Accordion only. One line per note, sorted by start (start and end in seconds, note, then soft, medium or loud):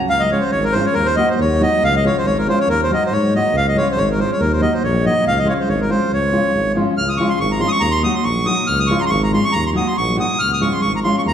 0.10 0.22 F5 loud
0.19 0.31 D#5 medium
0.32 0.44 C#5 medium
0.41 0.51 C5 medium
0.51 0.64 C#5 medium
0.64 0.74 A#4 medium
0.72 0.86 C5 medium
0.85 0.95 C#5 medium
0.93 1.07 A#4 medium
1.06 1.16 C5 loud
1.16 1.29 D#5 medium
1.30 1.40 C5 medium
1.41 1.62 C#5 medium
1.62 1.83 D#5 medium
1.84 1.95 F5 loud
1.96 2.05 D#5 medium
2.06 2.17 C#5 medium
2.17 2.26 C5 medium
2.26 2.38 C#5 medium
2.38 2.47 A#4 medium
2.49 2.59 C5 medium
2.60 2.68 C#5 medium
2.69 2.81 A#4 loud
2.83 2.91 C5 medium
2.93 3.04 D#5 medium
3.05 3.13 C5 medium
3.12 3.34 C#5 medium
3.36 3.56 D#5 medium
3.57 3.67 F5 loud
3.68 3.77 D#5 medium
3.77 3.88 C#5 medium
3.91 3.99 C5 medium
3.97 4.09 C#5 medium
4.11 4.20 A#4 medium
4.19 4.31 C5 medium
4.32 4.41 C#5 medium
4.40 4.52 A#4 medium
4.53 4.61 C5 medium
4.62 4.74 D#5 medium
4.73 4.83 C5 medium
4.84 5.05 C#5 medium
5.06 5.25 D#5 loud
5.27 5.39 F5 loud
5.39 5.48 D#5 medium
5.49 5.54 C#5 medium
5.59 5.69 C5 medium
5.69 5.81 C#5 medium
5.81 5.90 A#4 medium
5.90 6.12 C5 medium
6.13 6.72 C#5 medium
6.98 7.09 F6 loud
7.09 7.18 D#6 medium
7.17 7.30 C#6 medium
7.29 7.39 C6 medium
7.40 7.52 C#6 medium
7.51 7.61 A#5 medium
7.60 7.69 C6 medium
7.68 7.82 C#6 loud
7.68 7.72 D#6 medium
7.80 7.93 A#5 loud
7.91 8.02 C6 loud
8.03 8.16 D#6 medium
8.15 8.25 C6 medium
8.24 8.46 C#6 medium
8.46 8.68 D#6 loud
8.67 8.79 F6 loud
8.79 8.88 D#6 loud
8.87 9.00 C#6 medium
8.98 9.05 A#5 medium
8.98 9.02 C6 medium
9.06 9.11 C6 medium
9.06 9.22 C#6 loud
9.23 9.32 A#5 medium
9.33 9.45 C6 medium
9.45 9.54 C#6 loud
9.52 9.65 A#5 loud
9.66 9.70 C6 medium
9.77 9.88 D#6 medium
9.87 9.97 C6 medium
9.97 10.17 C#6 medium
10.20 10.41 D#6 medium
10.39 10.51 F6 loud
10.53 10.62 D#6 medium
10.62 10.73 C#6 medium
10.72 10.81 C6 medium
10.81 10.93 C#6 medium
10.96 11.00 A#5 medium
11.04 11.16 C6 medium
11.18 11.22 C#6 medium
11.28 11.33 A#5 loud